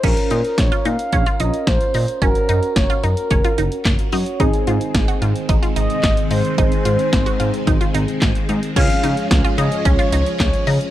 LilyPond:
<<
  \new Staff \with { instrumentName = "Soft synth lead" } { \time 4/4 \key des \major \tempo 4 = 110 bes'4 des''8 f''4 ees''8 c''4 | bes'4 des''8 bes'2 r8 | r2 r8 ees''4 c''8 | c''2. r4 |
f''4 r8 ees''8 des''4 des''8. r16 | }
  \new Staff \with { instrumentName = "Synth keys" } { \time 4/4 \key des \major <des' f' bes'>2~ <des' f' bes'>8 <des' f' bes'>4. | <des' ges' bes'>2.~ <des' ges' bes'>8 <des' ges' des''>8 | <c' ees' aes'>1 | <c' ees' aes'>1 |
<des' f' aes'>1 | }
  \new Staff \with { instrumentName = "Synth arpeggio sound" } { \time 4/4 \key des \major des'8 ees'8 r16 f'16 ees'8 des'16 f'16 ees'8 r8 ees'8 | des'8 ees'8 r16 f'16 ees'8 des'16 f'16 ees'8 r8 ees'8 | ees'8 f'8 r16 ges'16 f'8 ees'16 f'16 ees'8 r8 ees'8 | ees'8 f'8 r16 ges'16 f'8 ees'16 f'16 ees'8 r8 ees'8 |
des'8 ees'8 r16 f'16 ees'8 des'16 f'16 ees'8 r8 ees'8 | }
  \new Staff \with { instrumentName = "String machine" } { \clef bass \time 4/4 \key des \major r1 | r1 | <ees aes c'>1~ | <ees aes c'>1 |
<f aes des'>1 | }
  \new Staff \with { instrumentName = "Analog synth bass" } { \clef bass \time 4/4 \key des \major bes,,16 r16 bes,16 r16 bes,,16 r16 bes,16 r16 bes,,16 r16 bes,,16 r16 bes,,16 r16 bes,16 r16 | ges,,16 r16 ges,16 r16 ges,,16 r16 ges,16 r16 ges,,16 r16 ges,,16 r16 ges,,16 r16 ges,16 r16 | aes,,16 r16 aes,16 r16 aes,,16 r16 aes,16 r16 aes,,16 r16 aes,,16 r16 aes,,16 r16 aes,16 r16 | aes,,16 r16 aes,16 r16 aes,,16 r16 aes,16 r16 aes,,16 r16 aes,,16 r16 aes,,16 r16 aes,16 r16 |
des,16 r16 des16 r16 des,16 r16 des16 r16 des,16 r16 des,16 r16 des,16 r16 des16 r16 | }
  \new DrumStaff \with { instrumentName = "Drums" } \drummode { \time 4/4 <cymc hh bd>16 hh16 hh16 hh16 <hh bd sn>16 hh16 hh16 hh16 <hh bd>16 hh16 hh16 hh16 <hh bd sn>16 hh16 hho16 hh16 | <hh bd>16 hh16 hh16 hh16 <hh bd sn>16 hh16 hh16 hh16 <hh bd>16 hh16 hh16 hh16 <hc hh bd sn>16 hh16 hho16 hh16 | <hh bd>16 hh16 hh16 hh16 <hh bd sn>16 hh16 hh16 hh16 <hh bd>16 hh16 hh16 hh16 <hc hh bd sn>16 hh16 hho16 hh16 | <hh bd>16 hh16 hh16 hh16 <hh bd sn>16 hh16 hh16 hh16 <hh bd>16 hh16 hh16 hh16 <hc hh bd sn>16 hh16 hh16 hh16 |
<cymc hh bd>16 hh16 hh16 hh16 <hh bd sn>16 hh16 hh16 hh16 <hh bd>16 hh16 hh16 hh16 <hc hh bd sn>16 hh16 hho16 hh16 | }
>>